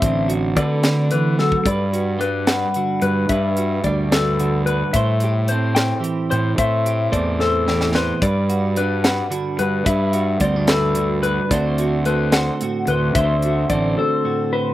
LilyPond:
<<
  \new Staff \with { instrumentName = "Clean electric guitar" } { \time 6/8 \key g \major \tempo 4. = 73 e''8 r8 d''4 b'8 a'8 | d''4 b'8 fis''4 b'8 | e''4 d''8 a'4 b'8 | e''4 c''8 g''4 c''8 |
e''4 d''8 a'4 b'8 | d''4 b'8 fis''4 b'8 | e''4 d''8 a'4 b'8 | d''4 b'8 fis''4 b'8 |
e''4 d''8 a'4 b'8 | }
  \new Staff \with { instrumentName = "Clean electric guitar" } { \time 6/8 \key g \major << { c'8 fis'8 b'2 | b'8 fis'8 d'8 b'8 fis'8 b'8 | b'8 fis'8 d'8 b'8 fis'8 b'8 | c''8 g'8 c'8 c''8 g'8 c''8 |
c''8 g'8 c'8 c''8 g'8 c''8 | b'8 fis'8 d'8 b'8 fis'8 b'8 | b'8 fis'8 c'16 d'16 b'8 fis'8 b'8 | <a c' fis' c''>8 fis'8 c'8 c''8 fis'8 c''8 |
c''8 fis'8 c'8 c''8 fis'8 c''8 | } \\ { d4 a8 d8 e8 fis8 | g,4 g4 d4 | g,4 g4 d4 | a,4 a4 e4 |
a,4 a4 e4 | g,4 g4 d4 | g,4 g4 d4 | d4 a4 a,4 |
d4 a4 a,4 | } >> }
  \new Staff \with { instrumentName = "Fingered electric bass" } { \clef bass \time 6/8 \key g \major a,,4 d2 | g,2 r8 g,8 | g,4 d,2 | a,2 r8 a,8 |
a,4 e,2 | g,2 r8 g,8 | g,4 d,2 | d,2 r8 d,8 |
d,4 a,,8 r4. | }
  \new DrumStaff \with { instrumentName = "Drums" } \drummode { \time 6/8 <hh bd>8 hh8 <hh bd>8 <hh sn>8 hh8 sn16 bd16 | <hh bd>8 hh8 hh8 <hh sn>8 hh8 hh8 | <hh bd>8 hh8 <hh bd>8 <hh sn>8 hh8 hh8 | <hh bd>8 hh8 hh8 <hh sn>8 hh8 hh8 |
<hh bd>8 hh8 <hh bd>8 sn8 sn16 sn16 sn8 | <hh bd>8 hh8 hh8 <hh sn>8 hh8 hh8 | <hh bd>8 hh8 <hh bd>8 <hh sn>8 hh8 hh8 | <hh bd>8 hh8 hh8 <hh sn>8 hh8 hh8 |
<hh bd>8 hh8 <hh bd>8 r4. | }
>>